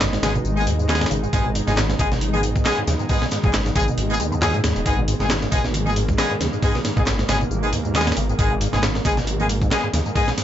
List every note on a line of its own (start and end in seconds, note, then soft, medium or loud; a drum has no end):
0.00 0.18 G#1 medium
0.00 0.07 G#2 medium
0.00 10.44 B2 medium
0.00 10.44 D#3 medium
0.00 10.44 G#3 medium
0.00 4.84 D#4 medium
0.00 snare loud
0.00 clap loud
0.00 closed hi-hat medium
0.00 tambourine soft
0.12 0.18 G#2 medium
0.12 snare soft
0.12 tambourine soft
0.22 0.39 G#1 medium
0.22 0.29 C#3 medium
0.22 0.31 G#3 medium
0.22 0.31 B3 medium
0.22 0.31 D#4 medium
0.22 0.31 G#4 loud
0.22 snare loud
0.22 closed hi-hat medium
0.22 tambourine medium
0.35 0.46 B2 medium
0.35 tambourine soft
0.35 low conga loud
0.44 0.68 G#1 loud
0.44 0.58 G#3 medium
0.44 tambourine soft
0.56 0.64 G#3 medium
0.56 0.62 B3 medium
0.56 0.64 B3 medium
0.56 0.64 D#4 medium
0.56 0.64 G#4 loud
0.56 tambourine soft
0.66 1.06 D#2 medium
0.66 0.73 G#2 medium
0.66 closed hi-hat medium
0.66 tambourine medium
0.79 0.90 G#2 medium
0.79 tambourine soft
0.88 0.95 G#3 loud
0.88 1.02 G#3 loud
0.88 1.02 B3 medium
0.88 1.02 D#4 medium
0.88 1.02 G#4 loud
0.88 snare medium
0.88 clap loud
0.88 closed hi-hat medium
0.88 tambourine soft
0.95 snare medium
0.95 closed hi-hat medium
1.01 1.06 G#2 medium
1.01 snare medium
1.01 closed hi-hat medium
1.06 snare medium
1.06 closed hi-hat medium
1.10 1.27 G#1 loud
1.10 1.17 C#3 medium
1.10 closed hi-hat medium
1.10 tambourine medium
1.23 1.28 G#2 medium
1.23 tambourine soft
1.32 1.61 G#1 loud
1.32 1.43 G#2 medium
1.32 1.47 G#3 medium
1.32 1.47 B3 medium
1.32 1.47 D#4 medium
1.32 1.47 G#4 loud
1.32 kick loud
1.32 closed hi-hat medium
1.32 tambourine soft
1.45 1.51 B2 medium
1.55 1.62 G#2 medium
1.55 closed hi-hat medium
1.55 tambourine medium
1.67 1.94 G#1 medium
1.67 1.72 G#2 medium
1.67 1.74 G#3 medium
1.67 1.74 B3 medium
1.67 1.74 D#4 medium
1.67 1.74 G#4 medium
1.67 snare soft
1.67 tambourine soft
1.67 low conga medium
1.77 1.84 G#2 medium
1.77 snare loud
1.77 clap loud
1.77 closed hi-hat medium
1.77 tambourine soft
1.89 1.95 G#2 medium
1.89 snare soft
1.89 tambourine soft
1.99 2.61 G#1 medium
1.99 2.06 C#3 medium
1.99 2.08 G#3 loud
1.99 2.08 B3 medium
1.99 2.08 D#4 medium
1.99 2.08 G#4 loud
1.99 kick loud
1.99 closed hi-hat medium
1.99 tambourine medium
2.11 2.22 B2 medium
2.11 snare soft
2.11 tambourine soft
2.11 low conga medium
2.21 2.35 G#3 medium
2.21 closed hi-hat medium
2.21 tambourine soft
2.33 2.40 G#3 medium
2.33 2.40 B3 medium
2.33 2.39 B3 medium
2.33 2.40 D#4 medium
2.33 2.40 G#4 loud
2.33 tambourine soft
2.33 high conga loud
2.43 2.50 G#2 medium
2.43 closed hi-hat medium
2.43 tambourine medium
2.55 2.67 G#2 medium
2.55 kick loud
2.55 tambourine soft
2.65 2.79 G#3 loud
2.65 2.72 G#3 loud
2.65 2.79 B3 medium
2.65 2.79 D#4 medium
2.65 2.79 G#4 loud
2.65 snare loud
2.65 clap loud
2.65 closed hi-hat medium
2.65 tambourine soft
2.78 2.83 G#2 medium
2.87 2.96 D#2 medium
2.87 2.94 C#3 medium
2.87 snare medium
2.87 closed hi-hat medium
2.87 tambourine medium
2.87 high conga loud
2.99 3.05 G#2 medium
2.99 tambourine soft
3.09 3.19 G#2 medium
3.09 3.23 G#3 medium
3.09 3.23 B3 medium
3.09 3.23 D#4 medium
3.09 3.23 G#4 medium
3.09 kick loud
3.09 open hi-hat medium
3.09 tambourine soft
3.21 3.27 B2 medium
3.21 snare medium
3.31 3.38 G#2 medium
3.31 snare medium
3.31 closed hi-hat medium
3.31 tambourine medium
3.43 3.71 G#1 medium
3.43 3.49 G#2 medium
3.43 3.51 G#3 medium
3.43 3.51 B3 medium
3.43 3.51 D#4 medium
3.43 3.51 G#4 medium
3.43 kick loud
3.43 tambourine soft
3.43 high conga medium
3.43 low conga medium
3.53 3.60 G#2 medium
3.53 snare loud
3.53 clap loud
3.53 closed hi-hat medium
3.53 tambourine soft
3.66 3.71 G#2 medium
3.66 snare soft
3.66 tambourine soft
3.66 high conga medium
3.75 3.92 G#1 medium
3.75 3.82 C#3 medium
3.75 3.84 G#3 medium
3.75 3.84 B3 medium
3.75 3.84 D#4 medium
3.75 3.84 G#4 loud
3.75 kick loud
3.75 closed hi-hat medium
3.75 tambourine medium
3.88 3.99 B2 medium
3.88 tambourine soft
3.88 low conga loud
3.97 4.21 G#1 loud
3.97 4.12 G#3 medium
3.97 closed hi-hat medium
3.97 tambourine soft
4.10 4.17 G#3 medium
4.10 4.17 B3 medium
4.10 4.15 B3 medium
4.10 4.17 D#4 medium
4.10 4.17 G#4 loud
4.10 tambourine soft
4.20 4.53 D#2 medium
4.20 4.26 G#3 loud
4.20 closed hi-hat medium
4.20 tambourine medium
4.32 4.35 F#2 loud
4.32 tambourine soft
4.42 4.48 F#2 loud
4.42 4.56 G#3 loud
4.42 4.56 B3 medium
4.42 4.56 D#4 medium
4.42 4.56 G#4 loud
4.42 snare loud
4.42 clap loud
4.42 closed hi-hat medium
4.42 tambourine soft
4.54 4.61 G#2 loud
4.54 4.65 A#2 medium
4.54 closed hi-hat soft
4.63 4.72 D#2 medium
4.63 4.77 G#2 medium
4.63 snare loud
4.63 closed hi-hat medium
4.63 tambourine medium
4.76 4.83 D#1 medium
4.76 4.79 C#3 medium
4.76 closed hi-hat soft
4.76 tambourine soft
4.85 5.14 G#1 loud
4.85 4.96 G#2 medium
4.85 5.00 G#3 medium
4.85 10.44 A#3 medium
4.85 5.00 B3 medium
4.85 5.00 D#4 medium
4.85 5.00 G#4 loud
4.85 kick loud
4.85 closed hi-hat medium
4.85 tambourine soft
4.98 5.03 B2 medium
5.08 5.15 G#2 medium
5.08 closed hi-hat medium
5.08 open hi-hat medium
5.08 tambourine medium
5.20 5.47 G#1 medium
5.20 5.26 G#2 loud
5.20 5.27 G#3 medium
5.20 5.27 B3 medium
5.20 5.27 D#4 medium
5.20 5.27 G#4 medium
5.20 snare soft
5.20 tambourine soft
5.20 low conga medium
5.30 5.37 G#2 medium
5.30 snare loud
5.30 clap loud
5.30 closed hi-hat medium
5.30 tambourine soft
5.42 5.48 G#2 medium
5.42 snare soft
5.42 tambourine soft
5.52 6.14 G#1 medium
5.52 5.59 C#3 medium
5.52 5.61 G#3 medium
5.52 5.61 B3 medium
5.52 5.61 D#4 medium
5.52 5.61 G#4 loud
5.52 kick loud
5.52 closed hi-hat medium
5.52 open hi-hat medium
5.52 tambourine medium
5.64 5.76 B2 medium
5.64 snare soft
5.64 tambourine soft
5.64 low conga medium
5.74 5.88 G#3 medium
5.74 closed hi-hat medium
5.74 tambourine soft
5.86 5.93 G#3 medium
5.86 5.92 B3 medium
5.86 5.93 B3 medium
5.86 5.93 D#4 medium
5.86 5.93 G#4 loud
5.86 tambourine soft
5.86 high conga loud
5.96 6.03 G#2 medium
5.96 closed hi-hat medium
5.96 open hi-hat medium
5.96 tambourine medium
6.08 6.19 G#2 medium
6.08 kick loud
6.08 tambourine soft
6.18 6.25 G#3 loud
6.18 6.32 G#3 loud
6.18 6.32 B3 loud
6.18 6.32 D#4 medium
6.18 6.32 G#4 loud
6.18 snare loud
6.18 clap loud
6.18 closed hi-hat medium
6.18 tambourine soft
6.30 6.36 G#2 medium
6.40 6.49 D#2 medium
6.40 6.47 C#3 medium
6.40 snare medium
6.40 closed hi-hat medium
6.40 open hi-hat medium
6.40 tambourine medium
6.40 high conga medium
6.53 6.58 G#2 medium
6.53 tambourine soft
6.63 6.73 G#2 medium
6.63 6.76 G#3 medium
6.63 6.76 B3 medium
6.63 6.76 D#4 medium
6.63 6.76 G#4 medium
6.63 kick loud
6.63 open hi-hat medium
6.63 tambourine soft
6.75 6.80 B2 medium
6.75 snare medium
6.85 6.91 G#2 medium
6.85 snare medium
6.85 closed hi-hat medium
6.85 open hi-hat medium
6.85 tambourine medium
6.97 7.24 G#1 medium
6.97 7.02 G#2 loud
6.97 7.04 G#3 medium
6.97 7.04 B3 medium
6.97 7.04 D#4 medium
6.97 7.04 G#4 medium
6.97 kick loud
6.97 tambourine soft
6.97 high conga medium
6.97 low conga medium
7.06 7.13 G#2 medium
7.06 snare loud
7.06 clap loud
7.06 closed hi-hat medium
7.06 tambourine soft
7.19 7.24 G#2 medium
7.19 snare soft
7.19 tambourine soft
7.29 7.45 G#1 medium
7.29 7.35 C#3 medium
7.29 7.37 G#3 loud
7.29 7.37 B3 medium
7.29 7.37 D#4 medium
7.29 7.37 G#4 loud
7.29 snare loud
7.29 closed hi-hat medium
7.29 open hi-hat medium
7.29 tambourine medium
7.41 7.52 B2 medium
7.41 tambourine soft
7.41 low conga medium
7.50 7.74 G#1 loud
7.50 7.64 G#3 medium
7.50 tambourine soft
7.63 7.70 G#3 medium
7.63 7.68 B3 medium
7.63 7.70 B3 medium
7.63 7.70 D#4 medium
7.63 7.70 G#4 loud
7.63 tambourine soft
7.72 8.12 D#2 medium
7.72 7.79 G#2 medium
7.72 closed hi-hat medium
7.72 open hi-hat medium
7.72 tambourine medium
7.84 7.96 G#2 medium
7.84 tambourine soft
7.94 8.01 G#3 loud
7.94 8.08 G#3 loud
7.94 8.08 B3 medium
7.94 8.08 D#4 medium
7.94 8.08 G#4 loud
7.94 snare medium
7.94 clap loud
7.94 closed hi-hat medium
7.94 tambourine soft
8.01 snare medium
8.01 closed hi-hat medium
8.07 8.12 G#2 medium
8.07 snare medium
8.07 closed hi-hat medium
8.12 snare medium
8.12 closed hi-hat medium
8.17 8.33 G#1 loud
8.17 8.23 C#3 medium
8.17 closed hi-hat medium
8.17 open hi-hat medium
8.17 tambourine medium
8.29 8.34 G#2 medium
8.29 tambourine soft
8.39 8.67 G#1 loud
8.39 8.49 G#2 medium
8.39 8.53 G#3 medium
8.39 8.53 B3 medium
8.39 8.53 D#4 medium
8.39 8.53 G#4 loud
8.39 kick loud
8.39 closed hi-hat medium
8.39 tambourine soft
8.51 8.56 B2 medium
8.61 8.68 G#2 medium
8.61 closed hi-hat medium
8.61 open hi-hat medium
8.61 tambourine medium
8.73 9.00 G#1 medium
8.73 8.78 G#2 loud
8.73 8.80 G#3 medium
8.73 8.80 B3 medium
8.73 8.80 D#4 medium
8.73 8.80 G#4 medium
8.73 snare soft
8.73 tambourine soft
8.73 low conga medium
8.83 8.90 G#2 medium
8.83 snare loud
8.83 clap loud
8.83 closed hi-hat medium
8.83 tambourine soft
8.95 9.01 G#2 medium
8.95 snare soft
8.95 tambourine soft
9.04 9.66 G#1 medium
9.04 9.12 C#3 medium
9.04 9.14 G#3 medium
9.04 9.14 B3 medium
9.04 9.14 D#4 medium
9.04 9.14 G#4 loud
9.04 kick loud
9.04 closed hi-hat medium
9.04 open hi-hat medium
9.04 tambourine medium
9.17 9.28 B2 medium
9.17 snare soft
9.17 tambourine soft
9.17 low conga medium
9.27 9.40 G#3 medium
9.27 closed hi-hat medium
9.27 tambourine soft
9.39 9.46 G#3 medium
9.39 9.44 B3 medium
9.39 9.46 B3 medium
9.39 9.46 D#4 medium
9.39 9.46 G#4 loud
9.39 tambourine soft
9.39 high conga loud
9.49 9.56 G#2 medium
9.49 closed hi-hat medium
9.49 open hi-hat medium
9.49 tambourine medium
9.61 9.72 G#2 medium
9.61 kick loud
9.61 tambourine soft
9.71 9.78 G#3 loud
9.71 9.85 G#3 loud
9.71 9.85 B3 medium
9.71 9.85 D#4 medium
9.71 9.85 G#4 loud
9.71 snare loud
9.71 clap loud
9.71 closed hi-hat medium
9.71 tambourine soft
9.83 9.89 G#2 medium
9.93 10.02 D#2 medium
9.93 10.00 C#3 medium
9.93 snare medium
9.93 closed hi-hat medium
9.93 open hi-hat medium
9.93 tambourine medium
9.93 high conga medium
10.05 10.11 G#2 medium
10.05 tambourine soft
10.15 10.25 G#2 medium
10.15 10.29 G#3 medium
10.15 10.29 B3 medium
10.15 10.29 D#4 medium
10.15 10.29 G#4 loud
10.15 kick loud
10.15 open hi-hat medium
10.15 tambourine soft
10.27 10.33 B2 medium
10.27 snare medium
10.27 tambourine soft
10.27 high conga medium
10.37 10.44 G#2 medium
10.37 snare medium
10.37 closed hi-hat medium
10.37 open hi-hat medium
10.37 tambourine medium